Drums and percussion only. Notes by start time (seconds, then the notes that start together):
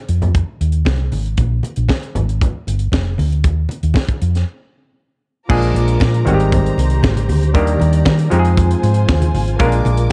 0.09 closed hi-hat
0.22 closed hi-hat, low conga
0.35 kick, closed hi-hat
0.61 closed hi-hat
0.72 closed hi-hat
0.85 kick, snare, high conga
1.12 open hi-hat, high conga
1.26 closed hi-hat
1.37 kick, closed hi-hat, muted conga
1.63 closed hi-hat, muted conga
1.76 closed hi-hat
1.89 kick, snare, high conga
2.03 closed hi-hat
2.15 closed hi-hat, low conga
2.29 closed hi-hat
2.41 kick, closed hi-hat, low conga
2.67 closed hi-hat, muted conga
2.79 closed hi-hat
2.92 kick, snare, high conga
3.18 open hi-hat, high conga
3.32 closed hi-hat
3.44 kick, closed hi-hat, muted conga
3.69 closed hi-hat, muted conga
3.83 closed hi-hat
3.94 kick, snare, high conga
4.09 kick, closed hi-hat
4.22 closed hi-hat
4.35 snare, closed hi-hat
5.50 kick, crash, muted conga
5.62 closed hi-hat
5.75 closed hi-hat, muted conga
5.88 closed hi-hat
6.00 kick, snare, high conga
6.14 closed hi-hat
6.27 closed hi-hat, low conga
6.40 closed hi-hat
6.52 kick, closed hi-hat, low conga
6.66 closed hi-hat
6.78 closed hi-hat, muted conga
6.90 closed hi-hat
7.03 kick, snare, high conga
7.16 closed hi-hat, high conga
7.29 open hi-hat, high conga
7.43 closed hi-hat
7.55 kick, closed hi-hat, muted conga
7.67 closed hi-hat
7.80 closed hi-hat, muted conga
7.93 closed hi-hat
8.05 kick, snare, high conga
8.19 closed hi-hat
8.31 closed hi-hat
8.45 closed hi-hat
8.57 kick, closed hi-hat
8.71 closed hi-hat
8.83 closed hi-hat, muted conga
8.94 closed hi-hat
9.08 kick, snare, high conga
9.22 closed hi-hat, high conga
9.34 open hi-hat, high conga
9.48 closed hi-hat
9.59 kick, closed hi-hat, muted conga
9.72 closed hi-hat
9.85 closed hi-hat, muted conga
9.97 closed hi-hat